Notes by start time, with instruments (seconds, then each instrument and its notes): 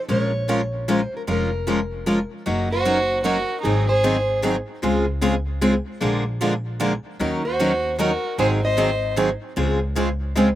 0.08 upright bass A#1, steel-string acoustic guitar F3 G#3 C#4 F4 A#4 C#5
0.48 steel-string acoustic guitar F3 G#3 C#4 F4 A#4
0.88 steel-string acoustic guitar F3 G#3 C#4 F4 A#4 C5
1.17 steel-string acoustic guitar A#4
1.27 upright bass F1, steel-string acoustic guitar F3 G#3 C#4 F4 A#4
1.67 steel-string acoustic guitar F3 G#3 C#4 F4 A#4
2.06 steel-string acoustic guitar F3 G#3 C#4 F4 A#4
2.46 upright bass F#1, steel-string acoustic guitar F#3 A#3 C#4 D#4 F#4 A#4
2.71 violin F#4, steel-string acoustic guitar C5
2.85 steel-string acoustic guitar F#3 A#3 C#4 D#4 F#4 A#4
3.23 steel-string acoustic guitar F#3 A#3 C#4 D#4 F#4 A#4, violin F#4
3.61 upright bass G#1, steel-string acoustic guitar D#3 F#3 D#4 G#4, violin D#4
3.65 steel-string acoustic guitar C4 G#4
3.87 violin G#4, steel-string acoustic guitar C5
4.03 steel-string acoustic guitar D#3 F#3 C4 D#4 G#4
4.42 steel-string acoustic guitar D#3 F#3 C4 D#4 G#4
4.82 upright bass C#2, steel-string acoustic guitar C#3 G#3 C4 F4 G#4
5.21 steel-string acoustic guitar C#3 G#3 C4 F4 G#4
5.61 steel-string acoustic guitar C#3 G#3 C4 F4 G#4
6.00 upright bass A#1, steel-string acoustic guitar D3 F3 G#3 A#3 D4 F4 G#4 A#4
6.41 steel-string acoustic guitar D3 F3 G#3 A#3 D4 F4 G#4 A#4
6.80 steel-string acoustic guitar D3 F3 G#3 A#3 D4 F4 G#4 A#4
7.19 upright bass D#2, steel-string acoustic guitar D#3 F#3 C#4 D#4 A#4
7.44 violin F#4, steel-string acoustic guitar C5
7.60 steel-string acoustic guitar D#3 F#3 C#4 D#4 A#4
7.99 steel-string acoustic guitar D#3 F#3 C#4 D#4 A#4, violin F#4
8.38 upright bass G#1, steel-string acoustic guitar D#3 F#3 C4 D#4 G#4 C5, violin G#4
8.63 violin C5, steel-string acoustic guitar D#5
8.77 steel-string acoustic guitar D#3 F#3 C4 D#4 G#4
9.16 steel-string acoustic guitar D#3 F#3 C4 D#4 G#4
9.57 upright bass C#2, steel-string acoustic guitar C#3 G#3 C4 F4 G#4
9.96 steel-string acoustic guitar C#3 G#3 C4 F4 G#4
10.36 steel-string acoustic guitar C#3 G#3 C4 F4 G#4